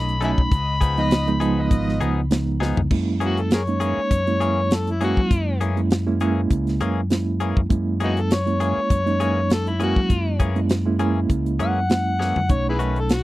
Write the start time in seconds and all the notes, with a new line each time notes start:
Already playing: B1 F#3 A3 C#4 D#4 A4 C#5 D#5 B5
0.08 closed hi-hat
0.21 F#3 A3 C#4 D#4 A4 E5 G#5 B5, closed hi-hat
0.38 B1, kick
0.51 C#2 F4 B4 D#5, kick, closed hi-hat
0.81 F3 B3 D#4 G#4, kick, closed hi-hat
0.96 F3 G#3 B3 D#4 F4 B4 D#5, closed hi-hat
1.11 snare, closed hi-hat
1.27 F3 G#3 B3 D#4, closed hi-hat
1.40 F3 G#3 B3 D#4 G#4, closed hi-hat
1.57 F4 B4 D#5
1.71 G#1, kick, closed hi-hat
1.89 snare
2.01 C#2 F3 B3 D#4 G#4, closed hi-hat
2.31 F3 G#3 B3 D#4, snare, closed hi-hat
2.60 F3 B3 D#4 G#4, snare
2.77 C#2, floor tom
2.91 F#2 G#3 A#3 C#4 E4, kick, crash
3.20 E3 A#3 C#4 F#4 G#4, closed hi-hat
3.37 A4, closed hi-hat
3.51 G#4 A#4 C#5, snare, closed hi-hat
3.67 G#3 A#3 C#4 D#4, closed hi-hat
3.80 E3 A#3 C#4 G#4, closed hi-hat
3.97 muted fingered electric bass stroke
4.11 F#2, kick, closed hi-hat
4.27 G#3 A#3 C#4 E4, closed hi-hat
4.40 E3 A#3 C#4 G#4, closed hi-hat
4.71 A4, snare, closed hi-hat
4.87 E4, closed hi-hat
5.01 E3 G#3 A#3 C#4 E4 F#4 G#4, closed hi-hat
5.17 F#3, kick
5.31 F#2, kick, closed hi-hat
5.61 E3 A#3 C#4 G#4, closed hi-hat
5.76 G#3 A#3 C#4 E4, closed hi-hat
5.91 snare, closed hi-hat
6.07 G#3 A#3 C#4 E4
6.20 E3 G#3 A#3 C#4 E4 G#4, closed hi-hat
6.50 C#2, kick, closed hi-hat
6.67 snare, closed hi-hat
6.80 F#2 E3 A#3 C#4 G#4, closed hi-hat
7.10 G#3 A#3 C#4 E4, snare, closed hi-hat
7.40 E3 A#3 C#4 G#4, closed hi-hat
7.57 F#2, kick
7.70 F#2 G#3 A#3 C#4 E4, kick, closed hi-hat
8.00 E3 A#3 B3 C#4 D#4 F#4 G#4, closed hi-hat
8.17 A4, closed hi-hat
8.31 C#5, snare, closed hi-hat
8.46 G#3 A#3 C#4 E4, closed hi-hat
8.60 E3 A#3 C#4 G#4, closed hi-hat
8.77 muted fingered electric bass stroke
8.90 F#2, kick, closed hi-hat
9.06 G#3 A#3 C#4 D#4, closed hi-hat
9.20 E3 A#3 C#4 G#4, closed hi-hat
9.50 A4, snare, closed hi-hat
9.67 E4, closed hi-hat
9.79 E3 G#3 A#3 C#4 E4 F#4 G#4, closed hi-hat
9.96 F#3, kick
10.10 F#2, kick, closed hi-hat
10.40 E3 A#3 C#4 G#4, kick, closed hi-hat
10.56 G#3 A#3 C#4 E4, closed hi-hat
10.70 snare, closed hi-hat
10.86 G#3 A#3 C#4 E4
10.99 E3 G#3 A#3 C#4 E4 G#4, closed hi-hat
11.30 C#2, kick, closed hi-hat
11.46 closed hi-hat
11.59 F#2 E3 A#3 C#4 G#4 F#5, closed hi-hat
11.90 G#3 A#3 C#4 E4, snare, closed hi-hat
12.19 E3 A#3 C#4 G#4, snare
12.36 F#2, floor tom
12.49 B1 F#3 A3 C#4 D#4 C#5, kick, closed hi-hat
12.69 E4 G#4 B4
12.79 D#3 A3 C#4 F#4, closed hi-hat
12.96 A4, closed hi-hat
13.09 F#4, snare, closed hi-hat